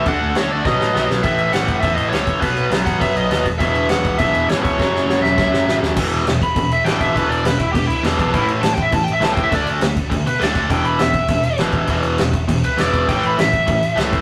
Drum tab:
CC |x-x-----|xxxxxxxx|xxxxxxxx|xxxxxxxx|
SD |--o-oooo|--o---o-|--o---o-|--o---o-|
BD |o---o---|o--oo--o|o--oo--o|o--oo--o|

CC |--------|xxxxxxxx|xxxxxxxx|xxxxxxxx|
SD |oooooooo|--o---o-|--o---o-|--o---o-|
BD |o---o---|o--oo--o|o--oo--o|o--oo--o|

CC |xxxxxxxx|xxxxxxxx|xxxxxxxx|xxxxxxxx|
SD |--o---o-|--o---o-|--o---o-|--o---o-|
BD |o--oo--o|o--oo--o|o--oo--o|o--oo--o|